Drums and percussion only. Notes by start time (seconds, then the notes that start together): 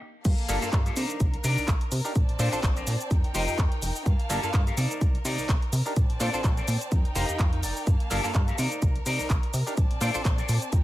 0.25 kick, closed hi-hat, crash, shaker
0.38 closed hi-hat
0.49 open hi-hat, shaker
0.62 shaker
0.73 kick, clap, closed hi-hat, shaker
0.86 closed hi-hat, shaker
0.96 open hi-hat, shaker
1.10 closed hi-hat, shaker
1.20 kick, closed hi-hat, shaker
1.34 closed hi-hat
1.44 open hi-hat, shaker
1.57 shaker
1.68 kick, clap, closed hi-hat, shaker
1.81 closed hi-hat
1.92 open hi-hat, shaker
2.05 shaker
2.16 kick, closed hi-hat, shaker
2.29 closed hi-hat
2.39 open hi-hat, shaker
2.53 shaker
2.63 kick, clap, closed hi-hat, shaker
2.77 closed hi-hat, shaker
2.87 open hi-hat, shaker
3.00 closed hi-hat, shaker
3.11 kick, closed hi-hat, shaker
3.24 closed hi-hat
3.35 open hi-hat, shaker
3.48 shaker
3.58 kick, clap, closed hi-hat, shaker
3.72 closed hi-hat
3.82 open hi-hat, shaker
3.96 shaker
4.06 kick, closed hi-hat, shaker
4.19 closed hi-hat
4.30 open hi-hat, shaker
4.43 shaker
4.54 kick, clap, closed hi-hat, shaker
4.67 closed hi-hat, shaker
4.77 open hi-hat, shaker
4.91 closed hi-hat, shaker
5.01 kick, closed hi-hat, shaker
5.15 closed hi-hat
5.25 open hi-hat, shaker
5.39 shaker
5.49 kick, clap, closed hi-hat, shaker
5.62 closed hi-hat
5.73 open hi-hat, shaker
5.86 shaker
5.96 kick, closed hi-hat, shaker
6.10 closed hi-hat
6.20 clap, open hi-hat, shaker
6.34 shaker
6.44 kick, clap, closed hi-hat, shaker
6.57 closed hi-hat, shaker
6.68 open hi-hat, shaker
6.81 closed hi-hat, shaker
6.92 kick, closed hi-hat, shaker
7.05 closed hi-hat
7.16 open hi-hat, shaker
7.29 closed hi-hat, shaker
7.39 kick, clap, closed hi-hat, shaker
7.53 closed hi-hat
7.63 open hi-hat, shaker
7.77 shaker
7.87 kick, closed hi-hat, shaker
8.00 closed hi-hat
8.11 open hi-hat, shaker
8.24 shaker
8.35 kick, clap, closed hi-hat, shaker
8.48 closed hi-hat, shaker
8.58 open hi-hat, shaker
8.72 closed hi-hat, shaker
8.82 kick, closed hi-hat, shaker
8.96 closed hi-hat
9.06 open hi-hat, shaker
9.19 shaker
9.30 kick, clap, closed hi-hat, shaker
9.43 closed hi-hat
9.54 open hi-hat, shaker
9.67 shaker
9.77 kick, closed hi-hat, shaker
9.91 closed hi-hat
10.01 open hi-hat, shaker
10.15 shaker
10.25 kick, clap, closed hi-hat, shaker
10.38 closed hi-hat, shaker
10.49 open hi-hat, shaker
10.62 closed hi-hat, shaker
10.73 kick, closed hi-hat, shaker